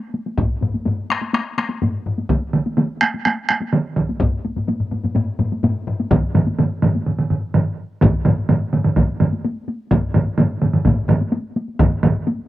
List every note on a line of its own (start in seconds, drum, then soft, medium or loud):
0.14 taiko high soft
0.26 taiko high medium
0.38 taiko loud
0.38 taiko low-mid loud
0.38 taiko high medium
0.61 taiko low-mid medium
0.61 taiko high soft
0.74 taiko high soft
0.85 taiko low-mid medium
0.85 taiko high medium
1.10 taiko rim medium
1.10 taiko high soft
1.22 taiko high soft
1.33 taiko rim medium
1.33 taiko high medium
1.58 taiko rim medium
1.58 taiko high medium
1.69 taiko high medium
1.82 taiko low-mid loud
1.82 taiko high medium
2.06 taiko low-mid medium
2.18 taiko high medium
2.29 taiko medium
2.29 taiko mid medium
2.29 taiko high medium
2.53 taiko mid medium
2.53 taiko high medium
2.66 taiko high medium
2.77 taiko mid medium
2.77 taiko high medium
3.01 taiko rim medium
3.01 taiko high medium
3.14 taiko high medium
3.25 taiko rim medium
3.25 taiko high medium
3.49 taiko rim medium
3.49 taiko high medium
3.62 taiko high medium
3.73 taiko mid loud
3.73 taiko high medium
3.96 taiko medium
3.96 taiko mid medium
4.09 taiko high medium
4.20 taiko loud
4.20 taiko low-mid loud
4.20 taiko high medium
4.45 taiko high medium
4.56 taiko low-mid medium
4.56 taiko high medium
4.68 taiko low-mid medium
4.68 taiko high medium
4.80 taiko low-mid medium
4.92 taiko low-mid medium
4.92 taiko high medium
5.04 taiko low-mid medium
5.04 taiko high medium
5.15 taiko low-mid loud
5.15 taiko high medium
5.39 taiko low-mid loud
5.39 taiko high medium
5.52 taiko high medium
5.63 taiko low-mid loud
5.63 taiko high medium
5.87 taiko low-mid loud
6.00 taiko high medium
6.11 taiko loud
6.11 taiko low-mid loud
6.11 taiko mid loud
6.11 taiko high medium
6.35 taiko low-mid loud
6.35 taiko mid loud
6.35 taiko high medium
6.47 taiko high medium
6.59 taiko low-mid loud
6.59 taiko mid medium
6.59 taiko high medium
6.82 taiko low-mid loud
6.82 taiko mid loud
6.82 taiko high medium
6.95 taiko high medium
7.06 taiko low-mid medium
7.06 taiko mid medium
7.19 taiko low-mid medium
7.19 taiko mid medium
7.30 taiko low-mid medium
7.30 taiko mid medium
7.54 taiko low-mid loud
7.54 taiko mid loud
8.01 taiko loud
8.01 taiko low-mid loud
8.01 taiko mid loud
8.01 taiko high medium
8.14 taiko high soft
8.25 taiko low-mid loud
8.25 taiko mid loud
8.25 taiko high medium
8.38 taiko high soft
8.49 taiko low-mid loud
8.49 taiko mid loud
8.49 taiko high medium
8.62 taiko high soft
8.73 taiko low-mid medium
8.73 taiko mid medium
8.73 taiko high medium
8.84 taiko low-mid medium
8.84 taiko mid medium
8.96 taiko medium
8.96 taiko low-mid loud
8.96 taiko mid loud
8.96 taiko high medium
9.09 taiko high soft
9.20 taiko low-mid loud
9.20 taiko mid loud
9.20 taiko high medium
9.33 taiko high medium
9.45 taiko high medium
9.56 taiko high soft
9.68 taiko high medium
9.91 taiko loud
9.91 taiko low-mid loud
9.91 taiko mid loud
9.91 taiko high medium
10.03 taiko high soft
10.14 taiko low-mid loud
10.14 taiko mid loud
10.14 taiko high medium
10.27 taiko high soft
10.38 taiko low-mid loud
10.38 taiko mid loud
10.38 taiko high medium
10.50 taiko high soft
10.62 taiko low-mid medium
10.62 taiko mid medium
10.62 taiko high medium
10.73 taiko low-mid medium
10.73 taiko mid medium
10.73 taiko high soft
10.85 taiko medium
10.85 taiko low-mid loud
10.85 taiko mid loud
10.85 taiko high medium
10.97 taiko high soft
11.09 taiko low-mid loud
11.09 taiko mid loud
11.09 taiko high medium
11.21 taiko high medium
11.32 taiko high medium
11.56 taiko high medium
11.68 taiko high soft
11.79 taiko loud
11.79 taiko low-mid loud
11.79 taiko mid loud
11.79 taiko high medium
11.92 taiko high soft
12.03 taiko low-mid loud
12.03 taiko mid loud
12.03 taiko high medium
12.27 taiko high medium
12.39 taiko high soft